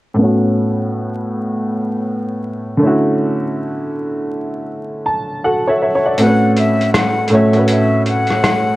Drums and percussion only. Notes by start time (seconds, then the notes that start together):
6.18 closed hi-hat
6.57 closed hi-hat
6.81 closed hi-hat
6.94 cross-stick, closed hi-hat
7.28 closed hi-hat
7.53 closed hi-hat
7.68 closed hi-hat
8.06 closed hi-hat
8.27 cross-stick, closed hi-hat
8.44 cross-stick, closed hi-hat